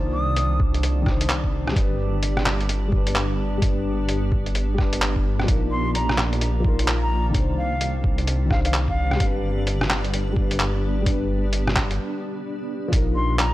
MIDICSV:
0, 0, Header, 1, 7, 480
1, 0, Start_track
1, 0, Tempo, 465116
1, 1816, Time_signature, 4, 2, 24, 8
1, 13970, End_track
2, 0, Start_track
2, 0, Title_t, "Flute"
2, 0, Program_c, 0, 73
2, 139, Note_on_c, 0, 87, 88
2, 618, Note_off_c, 0, 87, 0
2, 5897, Note_on_c, 0, 84, 86
2, 6119, Note_off_c, 0, 84, 0
2, 6139, Note_on_c, 0, 82, 89
2, 6393, Note_off_c, 0, 82, 0
2, 7249, Note_on_c, 0, 82, 94
2, 7496, Note_off_c, 0, 82, 0
2, 7819, Note_on_c, 0, 77, 90
2, 8206, Note_off_c, 0, 77, 0
2, 8778, Note_on_c, 0, 77, 86
2, 8873, Note_off_c, 0, 77, 0
2, 8927, Note_on_c, 0, 77, 72
2, 8984, Note_off_c, 0, 77, 0
2, 9169, Note_on_c, 0, 77, 98
2, 9558, Note_off_c, 0, 77, 0
2, 13578, Note_on_c, 0, 84, 91
2, 13799, Note_off_c, 0, 84, 0
2, 13822, Note_on_c, 0, 82, 89
2, 13970, Note_off_c, 0, 82, 0
2, 13970, End_track
3, 0, Start_track
3, 0, Title_t, "Synth texture"
3, 0, Program_c, 1, 99
3, 0, Note_on_c, 1, 62, 77
3, 12379, Note_off_c, 1, 62, 0
3, 13342, Note_on_c, 1, 77, 82
3, 13970, Note_off_c, 1, 77, 0
3, 13970, End_track
4, 0, Start_track
4, 0, Title_t, "Ambient pad"
4, 0, Program_c, 2, 92
4, 0, Note_on_c, 2, 51, 69
4, 0, Note_on_c, 2, 60, 77
4, 0, Note_on_c, 2, 65, 75
4, 380, Note_on_c, 2, 67, 73
4, 568, Note_on_c, 2, 74, 70
4, 676, Note_off_c, 2, 65, 0
4, 1817, Note_off_c, 2, 51, 0
4, 1817, Note_off_c, 2, 60, 0
4, 1819, Note_on_c, 2, 59, 72
4, 2049, Note_on_c, 2, 62, 65
4, 5656, Note_off_c, 2, 62, 0
4, 5657, Note_on_c, 2, 58, 74
4, 5658, Note_off_c, 2, 59, 0
4, 5659, Note_off_c, 2, 74, 0
4, 5866, Note_on_c, 2, 51, 67
4, 6037, Note_on_c, 2, 77, 72
4, 6064, Note_on_c, 2, 65, 70
4, 6438, Note_off_c, 2, 67, 0
4, 7577, Note_off_c, 2, 58, 0
4, 7578, Note_off_c, 2, 77, 0
4, 7581, Note_on_c, 2, 60, 82
4, 7779, Note_on_c, 2, 67, 83
4, 8167, Note_on_c, 2, 74, 73
4, 8355, Note_off_c, 2, 65, 0
4, 9496, Note_off_c, 2, 51, 0
4, 9499, Note_off_c, 2, 60, 0
4, 9500, Note_on_c, 2, 59, 69
4, 9554, Note_on_c, 2, 62, 71
4, 13336, Note_on_c, 2, 58, 73
4, 13338, Note_off_c, 2, 59, 0
4, 13338, Note_off_c, 2, 62, 0
4, 13339, Note_off_c, 2, 74, 0
4, 13496, Note_on_c, 2, 51, 78
4, 13797, Note_on_c, 2, 65, 78
4, 13859, Note_on_c, 2, 75, 70
4, 13970, Note_off_c, 2, 51, 0
4, 13970, Note_off_c, 2, 58, 0
4, 13970, Note_off_c, 2, 65, 0
4, 13970, Note_off_c, 2, 67, 0
4, 13970, Note_off_c, 2, 75, 0
4, 13970, End_track
5, 0, Start_track
5, 0, Title_t, "Felt piano"
5, 0, Program_c, 3, 0
5, 0, Note_on_c, 3, 51, 87
5, 0, Note_on_c, 3, 62, 80
5, 0, Note_on_c, 3, 72, 96
5, 75, Control_c, 3, 64, 127
5, 1037, Note_off_c, 3, 51, 0
5, 1053, Note_on_c, 3, 51, 89
5, 1074, Note_off_c, 3, 62, 0
5, 1095, Note_off_c, 3, 72, 0
5, 1095, Note_on_c, 3, 62, 79
5, 1135, Note_on_c, 3, 72, 96
5, 1771, Note_on_c, 3, 55, 91
5, 1773, Note_off_c, 3, 51, 0
5, 1794, Note_off_c, 3, 62, 0
5, 1813, Note_on_c, 3, 62, 80
5, 1814, Note_off_c, 3, 72, 0
5, 1829, Control_c, 3, 64, 0
5, 1854, Note_on_c, 3, 71, 98
5, 2023, Control_c, 3, 64, 127
5, 2956, Note_off_c, 3, 55, 0
5, 2971, Note_on_c, 3, 55, 87
5, 2993, Note_off_c, 3, 62, 0
5, 3013, Note_off_c, 3, 71, 0
5, 3013, Note_on_c, 3, 62, 78
5, 3055, Note_on_c, 3, 71, 92
5, 3675, Note_off_c, 3, 55, 0
5, 3690, Note_on_c, 3, 55, 88
5, 3713, Note_off_c, 3, 62, 0
5, 3733, Note_on_c, 3, 62, 81
5, 3734, Note_off_c, 3, 71, 0
5, 3774, Note_on_c, 3, 71, 95
5, 4877, Note_off_c, 3, 55, 0
5, 4893, Note_on_c, 3, 55, 87
5, 4913, Note_off_c, 3, 62, 0
5, 4933, Note_off_c, 3, 71, 0
5, 4935, Note_on_c, 3, 62, 77
5, 4976, Note_on_c, 3, 71, 95
5, 5613, Note_off_c, 3, 55, 0
5, 5613, Note_on_c, 3, 53, 88
5, 5634, Note_off_c, 3, 62, 0
5, 5655, Note_off_c, 3, 71, 0
5, 5655, Note_on_c, 3, 63, 81
5, 5669, Control_c, 3, 64, 0
5, 5697, Note_on_c, 3, 70, 97
5, 5857, Control_c, 3, 64, 127
5, 6797, Note_off_c, 3, 53, 0
5, 6812, Note_on_c, 3, 53, 86
5, 6834, Note_off_c, 3, 63, 0
5, 6853, Note_on_c, 3, 63, 82
5, 6855, Note_off_c, 3, 70, 0
5, 6893, Note_on_c, 3, 70, 96
5, 7532, Note_off_c, 3, 53, 0
5, 7534, Note_on_c, 3, 51, 90
5, 7553, Note_off_c, 3, 63, 0
5, 7573, Note_off_c, 3, 70, 0
5, 7574, Note_on_c, 3, 62, 82
5, 7592, Control_c, 3, 64, 0
5, 7616, Note_on_c, 3, 72, 100
5, 7797, Control_c, 3, 64, 127
5, 8717, Note_off_c, 3, 51, 0
5, 8732, Note_on_c, 3, 51, 86
5, 8753, Note_off_c, 3, 62, 0
5, 8775, Note_off_c, 3, 72, 0
5, 8775, Note_on_c, 3, 62, 81
5, 8817, Note_on_c, 3, 72, 98
5, 9452, Note_off_c, 3, 51, 0
5, 9453, Note_on_c, 3, 55, 88
5, 9474, Note_off_c, 3, 62, 0
5, 9494, Note_on_c, 3, 62, 82
5, 9495, Note_off_c, 3, 72, 0
5, 9509, Control_c, 3, 64, 0
5, 9536, Note_on_c, 3, 71, 105
5, 9717, Control_c, 3, 64, 127
5, 10637, Note_off_c, 3, 55, 0
5, 10652, Note_on_c, 3, 55, 89
5, 10673, Note_off_c, 3, 62, 0
5, 10692, Note_on_c, 3, 62, 79
5, 10694, Note_off_c, 3, 71, 0
5, 10733, Note_on_c, 3, 71, 100
5, 11356, Note_off_c, 3, 55, 0
5, 11372, Note_on_c, 3, 55, 90
5, 11393, Note_off_c, 3, 62, 0
5, 11411, Note_on_c, 3, 62, 85
5, 11413, Note_off_c, 3, 71, 0
5, 11455, Note_on_c, 3, 71, 100
5, 12354, Note_off_c, 3, 55, 0
5, 12374, Note_off_c, 3, 62, 0
5, 12396, Note_off_c, 3, 71, 0
5, 13294, Note_on_c, 3, 53, 89
5, 13335, Note_on_c, 3, 63, 83
5, 13351, Control_c, 3, 64, 0
5, 13377, Note_on_c, 3, 70, 102
5, 13542, Control_c, 3, 64, 127
5, 13970, Note_off_c, 3, 53, 0
5, 13970, Note_off_c, 3, 63, 0
5, 13970, Note_off_c, 3, 70, 0
5, 13970, End_track
6, 0, Start_track
6, 0, Title_t, "Detuned saw bass"
6, 0, Program_c, 4, 39
6, 0, Note_on_c, 4, 36, 86
6, 1799, Note_off_c, 4, 36, 0
6, 1815, Note_on_c, 4, 31, 84
6, 5637, Note_off_c, 4, 31, 0
6, 5656, Note_on_c, 4, 34, 84
6, 7558, Note_off_c, 4, 34, 0
6, 7577, Note_on_c, 4, 36, 86
6, 9479, Note_off_c, 4, 36, 0
6, 9495, Note_on_c, 4, 31, 86
6, 12376, Note_off_c, 4, 31, 0
6, 13337, Note_on_c, 4, 34, 90
6, 13970, Note_off_c, 4, 34, 0
6, 13970, End_track
7, 0, Start_track
7, 0, Title_t, "Drums"
7, 376, Note_on_c, 9, 42, 57
7, 480, Note_off_c, 9, 42, 0
7, 616, Note_on_c, 9, 36, 102
7, 720, Note_off_c, 9, 36, 0
7, 768, Note_on_c, 9, 42, 29
7, 860, Note_off_c, 9, 42, 0
7, 860, Note_on_c, 9, 42, 57
7, 963, Note_off_c, 9, 42, 0
7, 1097, Note_on_c, 9, 36, 105
7, 1098, Note_on_c, 9, 37, 34
7, 1200, Note_off_c, 9, 36, 0
7, 1202, Note_off_c, 9, 37, 0
7, 1247, Note_on_c, 9, 42, 54
7, 1336, Note_off_c, 9, 42, 0
7, 1336, Note_on_c, 9, 39, 101
7, 1336, Note_on_c, 9, 42, 57
7, 1439, Note_off_c, 9, 39, 0
7, 1439, Note_off_c, 9, 42, 0
7, 1485, Note_on_c, 9, 36, 61
7, 1588, Note_off_c, 9, 36, 0
7, 1728, Note_on_c, 9, 37, 51
7, 1817, Note_on_c, 9, 36, 114
7, 1821, Note_on_c, 9, 42, 53
7, 1832, Note_off_c, 9, 37, 0
7, 1920, Note_off_c, 9, 36, 0
7, 1924, Note_off_c, 9, 42, 0
7, 2298, Note_on_c, 9, 42, 54
7, 2401, Note_off_c, 9, 42, 0
7, 2446, Note_on_c, 9, 37, 58
7, 2538, Note_off_c, 9, 37, 0
7, 2538, Note_on_c, 9, 37, 55
7, 2538, Note_on_c, 9, 39, 102
7, 2642, Note_off_c, 9, 37, 0
7, 2642, Note_off_c, 9, 39, 0
7, 2689, Note_on_c, 9, 42, 28
7, 2778, Note_off_c, 9, 42, 0
7, 2778, Note_on_c, 9, 42, 56
7, 2881, Note_off_c, 9, 42, 0
7, 3016, Note_on_c, 9, 36, 109
7, 3119, Note_off_c, 9, 36, 0
7, 3166, Note_on_c, 9, 42, 55
7, 3256, Note_off_c, 9, 42, 0
7, 3256, Note_on_c, 9, 39, 103
7, 3256, Note_on_c, 9, 42, 54
7, 3359, Note_off_c, 9, 39, 0
7, 3359, Note_off_c, 9, 42, 0
7, 3736, Note_on_c, 9, 36, 117
7, 3739, Note_on_c, 9, 42, 52
7, 3839, Note_off_c, 9, 36, 0
7, 3842, Note_off_c, 9, 42, 0
7, 4217, Note_on_c, 9, 42, 54
7, 4320, Note_off_c, 9, 42, 0
7, 4456, Note_on_c, 9, 36, 105
7, 4559, Note_off_c, 9, 36, 0
7, 4606, Note_on_c, 9, 42, 27
7, 4696, Note_off_c, 9, 42, 0
7, 4696, Note_on_c, 9, 42, 54
7, 4799, Note_off_c, 9, 42, 0
7, 4937, Note_on_c, 9, 36, 105
7, 4937, Note_on_c, 9, 37, 34
7, 5040, Note_off_c, 9, 36, 0
7, 5040, Note_off_c, 9, 37, 0
7, 5085, Note_on_c, 9, 42, 54
7, 5179, Note_off_c, 9, 42, 0
7, 5179, Note_on_c, 9, 39, 102
7, 5179, Note_on_c, 9, 42, 54
7, 5282, Note_off_c, 9, 39, 0
7, 5282, Note_off_c, 9, 42, 0
7, 5326, Note_on_c, 9, 36, 60
7, 5429, Note_off_c, 9, 36, 0
7, 5568, Note_on_c, 9, 37, 48
7, 5657, Note_on_c, 9, 36, 112
7, 5658, Note_on_c, 9, 42, 50
7, 5671, Note_off_c, 9, 37, 0
7, 5760, Note_off_c, 9, 36, 0
7, 5761, Note_off_c, 9, 42, 0
7, 6141, Note_on_c, 9, 42, 54
7, 6244, Note_off_c, 9, 42, 0
7, 6289, Note_on_c, 9, 37, 58
7, 6379, Note_off_c, 9, 37, 0
7, 6379, Note_on_c, 9, 37, 55
7, 6379, Note_on_c, 9, 39, 99
7, 6482, Note_off_c, 9, 37, 0
7, 6482, Note_off_c, 9, 39, 0
7, 6530, Note_on_c, 9, 42, 28
7, 6619, Note_off_c, 9, 42, 0
7, 6619, Note_on_c, 9, 42, 52
7, 6722, Note_off_c, 9, 42, 0
7, 6858, Note_on_c, 9, 36, 102
7, 6961, Note_off_c, 9, 36, 0
7, 7009, Note_on_c, 9, 42, 51
7, 7099, Note_off_c, 9, 42, 0
7, 7099, Note_on_c, 9, 39, 101
7, 7099, Note_on_c, 9, 42, 51
7, 7202, Note_off_c, 9, 39, 0
7, 7202, Note_off_c, 9, 42, 0
7, 7577, Note_on_c, 9, 36, 106
7, 7580, Note_on_c, 9, 42, 52
7, 7680, Note_off_c, 9, 36, 0
7, 7683, Note_off_c, 9, 42, 0
7, 8059, Note_on_c, 9, 42, 54
7, 8162, Note_off_c, 9, 42, 0
7, 8297, Note_on_c, 9, 36, 97
7, 8400, Note_off_c, 9, 36, 0
7, 8445, Note_on_c, 9, 42, 27
7, 8540, Note_off_c, 9, 42, 0
7, 8540, Note_on_c, 9, 42, 53
7, 8643, Note_off_c, 9, 42, 0
7, 8776, Note_on_c, 9, 36, 99
7, 8779, Note_on_c, 9, 37, 36
7, 8879, Note_off_c, 9, 36, 0
7, 8882, Note_off_c, 9, 37, 0
7, 8926, Note_on_c, 9, 42, 53
7, 9018, Note_off_c, 9, 42, 0
7, 9018, Note_on_c, 9, 39, 97
7, 9018, Note_on_c, 9, 42, 51
7, 9121, Note_off_c, 9, 39, 0
7, 9121, Note_off_c, 9, 42, 0
7, 9165, Note_on_c, 9, 36, 58
7, 9268, Note_off_c, 9, 36, 0
7, 9405, Note_on_c, 9, 37, 51
7, 9496, Note_on_c, 9, 36, 104
7, 9496, Note_on_c, 9, 42, 51
7, 9508, Note_off_c, 9, 37, 0
7, 9599, Note_off_c, 9, 36, 0
7, 9600, Note_off_c, 9, 42, 0
7, 9978, Note_on_c, 9, 42, 56
7, 10081, Note_off_c, 9, 42, 0
7, 10126, Note_on_c, 9, 37, 62
7, 10219, Note_off_c, 9, 37, 0
7, 10219, Note_on_c, 9, 37, 60
7, 10219, Note_on_c, 9, 39, 96
7, 10322, Note_off_c, 9, 37, 0
7, 10322, Note_off_c, 9, 39, 0
7, 10366, Note_on_c, 9, 42, 29
7, 10460, Note_off_c, 9, 42, 0
7, 10460, Note_on_c, 9, 42, 53
7, 10563, Note_off_c, 9, 42, 0
7, 10696, Note_on_c, 9, 36, 96
7, 10799, Note_off_c, 9, 36, 0
7, 10846, Note_on_c, 9, 42, 53
7, 10936, Note_off_c, 9, 42, 0
7, 10936, Note_on_c, 9, 39, 99
7, 10936, Note_on_c, 9, 42, 53
7, 11039, Note_off_c, 9, 39, 0
7, 11039, Note_off_c, 9, 42, 0
7, 11415, Note_on_c, 9, 36, 104
7, 11418, Note_on_c, 9, 42, 54
7, 11519, Note_off_c, 9, 36, 0
7, 11521, Note_off_c, 9, 42, 0
7, 11896, Note_on_c, 9, 42, 56
7, 11999, Note_off_c, 9, 42, 0
7, 12048, Note_on_c, 9, 37, 64
7, 12136, Note_on_c, 9, 36, 100
7, 12138, Note_off_c, 9, 37, 0
7, 12138, Note_on_c, 9, 37, 61
7, 12138, Note_on_c, 9, 39, 97
7, 12239, Note_off_c, 9, 36, 0
7, 12241, Note_off_c, 9, 37, 0
7, 12241, Note_off_c, 9, 39, 0
7, 12288, Note_on_c, 9, 42, 30
7, 12391, Note_off_c, 9, 42, 0
7, 13337, Note_on_c, 9, 36, 115
7, 13342, Note_on_c, 9, 42, 57
7, 13440, Note_off_c, 9, 36, 0
7, 13445, Note_off_c, 9, 42, 0
7, 13819, Note_on_c, 9, 39, 106
7, 13819, Note_on_c, 9, 42, 59
7, 13922, Note_off_c, 9, 39, 0
7, 13922, Note_off_c, 9, 42, 0
7, 13970, End_track
0, 0, End_of_file